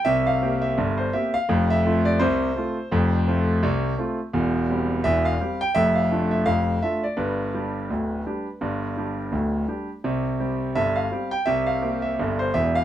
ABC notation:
X:1
M:2/4
L:1/16
Q:"Swing 16ths" 1/4=84
K:C
V:1 name="Grand piano"
e f2 e2 c e f- | f e2 d c4- | c6 z2 | z4 e f2 g |
e f2 e f2 e d | B8- | B6 z2 | z4 e f2 g |
e f2 e2 c e f |]
V:2 name="Grand piano" clef=bass
[C,,C,]2 [_B,CG]2 [G,,,G,,]2 [B,CG]2 | [F,,,F,,]2 [A,CF]2 [C,,C,]2 [A,CF]2 | [F,,,F,,]2 [A,CF]2 [C,,C,]2 [A,CF]2 | [E,,,E,,]2 [G,CG]2 [E,,,E,,]2 [G,CG]2 |
[F,,,F,,]2 [A,DF]2 [F,,,F,,]2 [A,DF]2 | [G,,,G,,]2 [G,DG]2 [D,,,D,,]2 [G,DG]2 | [G,,,G,,]2 [G,DG]2 [D,,,D,,]2 [G,DG]2 | [C,,C,]2 [G,CG]2 [G,,,G,,]2 [G,CG]2 |
[C,,C,]2 [_B,CG]2 [G,,,G,,]2 [E,,,E,,]2 |]